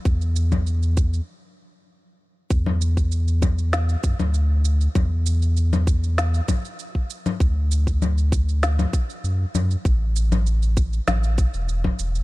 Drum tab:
SH |xxxxxxxx--------|x-xxxxxxxxxxx-xx|x-xxxxxxxxxxx-xx|x-xxxxxxxxxxx-xx|
SD |----------------|--------o-------|--------o-------|--------o-------|
CG |---O------------|-O----O----O----|O----O----O----O|----O----O----O-|
BD |o--o--o---------|o--o--o---o-----|o-----o---o--o--|o--o--o---o-----|

SH |x-xxxxxxxxxxx-xx|
SD |--------o-------|
CG |---O----O----O--|
BD |o-----o---o--o--|